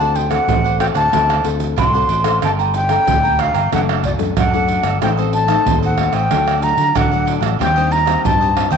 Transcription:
Already playing: fingered electric bass D2, nylon-string guitar D3, flute A5
0.00 nylon-string guitar C4 F#4 A4, cavaquinho C5 D5 F#5, pandeiro, shaker
0.15 flute G5, muted cavaquinho stroke, pandeiro
0.30 nylon-string guitar C4 F#4 A4, cavaquinho C5 D5 F#5, flute F#5, pandeiro, tamborim, shaker
0.48 fingered electric bass A1, nylon-string guitar A2, cavaquinho D4 C5 D5 F#5, pandeiro, shaker, surdo
0.64 cavaquinho C5 D5 F#5, pandeiro, shaker
0.79 nylon-string guitar C4 F#4 A4, flute G5, pandeiro, tamborim
0.94 fingered electric bass D2, cavaquinho C5 D5 F#5, flute A5, pandeiro, tamborim, shaker
1.12 fingered electric bass D2, nylon-string guitar D3 C4 F#4 A4, cavaquinho D4 C5 D5 F#5, pandeiro, tamborim, shaker, surdo
1.29 cavaquinho C5 D5 F#5, pandeiro, tamborim, shaker
1.44 fingered electric bass D2, nylon-string guitar C4 F#4 A4, muted cavaquinho stroke, pandeiro, shaker
1.60 pandeiro, shaker
1.76 fingered electric bass C2, nylon-string guitar A2, cavaquinho D4 C5 D5 F#5, flute C6, pandeiro, tamborim, shaker, surdo
1.94 nylon-string guitar C4 F#4 A4, cavaquinho C5 D5 F#5, pandeiro, shaker
2.08 fingered electric bass A1, cavaquinho D4 C5 D5 F#5, pandeiro
2.24 nylon-string guitar A#3 D4 A4, cavaquinho C5 D5 F#5, pandeiro, tamborim, shaker
2.42 fingered electric bass G1, nylon-string guitar G3, cavaquinho A4 D5 G5 A#5, flute A5, pandeiro, tamborim, shaker, surdo
2.59 cavaquinho D5 G5 A#5, pandeiro, shaker
2.74 flute G5, muted cavaquinho stroke, pandeiro, shaker
2.89 nylon-string guitar A#3 D4 A4, cavaquinho D5 G5 A#5, pandeiro, tamborim, shaker
3.07 fingered electric bass D2, nylon-string guitar D3, cavaquinho A4 D5 G5 A#5, pandeiro, shaker, surdo
3.23 nylon-string guitar A#3 D4, cavaquinho D5 G5 A#5, pandeiro, shaker
3.39 flute F5, pandeiro, tamborim
3.53 fingered electric bass G1, cavaquinho D5 G5 A#5, pandeiro, tamborim, shaker
3.72 fingered electric bass F#1, nylon-string guitar F#3 A3 D4 A4, cavaquinho D4 A4 D5 F#5, flute F#5, pandeiro, tamborim, shaker, surdo
3.89 cavaquinho A4 D5 F#5, pandeiro, tamborim, shaker
4.04 flute D5, muted cavaquinho stroke, pandeiro, surdo
4.18 fingered electric bass F#2, nylon-string guitar A3 D4 A4, pandeiro, shaker
4.37 fingered electric bass F#2, nylon-string guitar F#3, cavaquinho D4 A4 D5 F#5, flute F#5, pandeiro, tamborim, shaker, surdo
4.53 nylon-string guitar A3 D4 A4, cavaquinho A4 D5 F#5, pandeiro, shaker
4.68 cavaquinho D4 A4 D5 F#5, pandeiro, shaker
4.83 fingered electric bass G1, cavaquinho A4 D5 F#5, pandeiro, tamborim, shaker
5.01 fingered electric bass A1, nylon-string guitar A2 A3 C4 D#4, cavaquinho D#4 A4 C5 D#5, flute G5, pandeiro, tamborim, shaker, surdo
5.17 nylon-string guitar A3 C4 D#4, cavaquinho A4 C5 D#5, pandeiro, shaker
5.33 flute A5, muted cavaquinho stroke, pandeiro
5.48 nylon-string guitar A3 C4 D#4, cavaquinho A4 C5 D#5, pandeiro, tamborim, shaker
5.66 fingered electric bass D#2, nylon-string guitar A2, cavaquinho D#4 A4 C5 D#5, pandeiro, shaker, surdo
5.83 cavaquinho A4 C5 D#5, flute F#5, pandeiro, shaker
5.98 nylon-string guitar A3 C4 D#4, pandeiro, tamborim
6.13 fingered electric bass A1, cavaquinho A4 C5 D#5, flute G5, pandeiro, tamborim, shaker
6.31 fingered electric bass D2, nylon-string guitar D3 F#3 A3 D4, cavaquinho D4 A4 D5 F#5, pandeiro, tamborim, shaker, surdo
6.47 cavaquinho A4 D5 F#5, pandeiro, tamborim, shaker
6.62 nylon-string guitar F#3 A3 D4, flute A#5, muted cavaquinho stroke, pandeiro, shaker
6.77 fingered electric bass D3, pandeiro, shaker
6.95 nylon-string guitar A2, fingered electric bass D3, cavaquinho D4 A4 D5 F#5, flute F#5, pandeiro, tamborim, shaker, surdo
7.12 nylon-string guitar F#3 A3 D4, cavaquinho A4 D5 F#5, pandeiro, shaker
7.26 cavaquinho D4 A4 D5 F#5, pandeiro, shaker
7.41 fingered electric bass A1, cavaquinho A4 D5 F#5, pandeiro, tamborim, shaker
7.59 fingered electric bass D#2, nylon-string guitar D#3 G3 C4 D4, cavaquinho D4 G4 C5 D#5, flute G5, pandeiro, tamborim, shaker, surdo
7.76 nylon-string guitar G3 C4 D4, cavaquinho G4 C5 D#5, pandeiro, shaker
7.91 flute A#5, muted cavaquinho stroke, pandeiro
8.06 nylon-string guitar G3 C4 D4, cavaquinho G4 C5 D#5, pandeiro, tamborim, shaker
8.24 fingered electric bass G2, nylon-string guitar D#3, cavaquinho D4 G4 C5 D#5, flute A5, pandeiro, shaker, surdo
8.41 cavaquinho G4 C5 D#5, pandeiro, shaker
8.56 nylon-string guitar G3 C4 D4, pandeiro, tamborim
8.70 fingered electric bass D#2, cavaquinho G4 C5 D#5, flute G5, pandeiro, tamborim, shaker

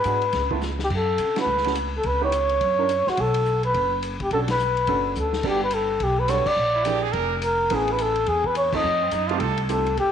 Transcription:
Already playing: trumpet B4
0.04 upright bass G#2, grand piano G#3 B3 D4 F#4, hi-hat pedal, ride
0.22 ride
0.33 upright bass C#2, kick, snare, ride
0.51 grand piano A3 B3 E4 F4, kick
0.61 snare, hi-hat pedal
0.79 snare
0.84 trumpet G4
0.90 upright bass F#2, kick, crash
0.97 trumpet A4
1.18 upright bass C#3, hi-hat pedal, ride
1.36 grand piano A3 C#4 E4 F#4, trumpet B4, snare, ride
1.46 upright bass C#2
1.57 snare
1.64 grand piano A3 C#4 E4 F#4, snare, ride
1.75 hi-hat pedal, ride
1.97 trumpet A4
2.03 upright bass C#2, trumpet B4, kick, ride
2.21 grand piano B3 D#4 E4 G4, trumpet C#5
2.32 hi-hat pedal, ride
2.49 ride
2.61 upright bass F#2, kick, ride
2.78 grand piano C#4 D4 E4 A#4
2.89 hi-hat pedal, ride
3.07 trumpet F#4, muted upright bass stroke, snare
3.17 upright bass B1, trumpet A4, kick, ride
3.34 ride
3.45 hi-hat pedal
3.63 trumpet B4, ride
3.74 upright bass F#1, kick, ride
4.03 hi-hat pedal, ride
4.20 trumpet G4, kick, ride
4.31 upright bass B1, grand piano C#4 D4 F#4 A4, trumpet A4, kick, ride
4.48 trumpet B4, snare, ride
4.59 hi-hat pedal
4.77 ride
4.87 upright bass F#1, grand piano C#4 D4 F#4 A4, kick, ride
5.15 upright bass D2, hi-hat pedal
5.19 trumpet A4
5.33 snare
5.43 upright bass G1, grand piano G3 B3 D4 F#4 A4, kick, crash
5.48 trumpet G4
5.64 trumpet B4
5.71 trumpet A4, hi-hat pedal, ride
6.00 upright bass B1, trumpet G4, kick, ride
6.19 trumpet B4
6.28 grand piano G3 B3 D4 F#4 A4, trumpet C#5, snare, hi-hat pedal, ride
6.46 trumpet D5, muted upright bass stroke, kick, crash
6.56 upright bass A#1
6.75 trumpet E4
6.84 grand piano F3 A#3 D4 E4 G#4, trumpet G4, hi-hat pedal, ride
7.03 trumpet G#4
7.12 upright bass F1, trumpet A#4, kick, ride
7.42 trumpet A#4, hi-hat pedal, ride
7.70 upright bass A1, grand piano A3 B3 C#4 E4 G#4, kick, ride
7.75 trumpet G#4
7.88 ride
7.92 trumpet B4
7.99 trumpet A4, hi-hat pedal, ride
8.16 ride
8.26 upright bass E2, trumpet G#4, kick, ride
8.44 trumpet B4, kick
8.55 trumpet C#5, hi-hat pedal, ride
8.73 grand piano A3 C4 D#4 F4 A4, trumpet D#5, kick, crash
8.83 upright bass F2
9.02 trumpet C4
9.11 upright bass F#2, trumpet D#4, hi-hat pedal, ride
9.29 grand piano A3 C4 D#4 F4 G4, trumpet F4, ride
9.39 upright bass C2, trumpet A4, kick, ride
9.57 ride
9.69 grand piano A3 C4 D#4 F4 G4, trumpet A4, hi-hat pedal, ride
9.86 ride
9.97 upright bass G1, trumpet G4, kick, ride

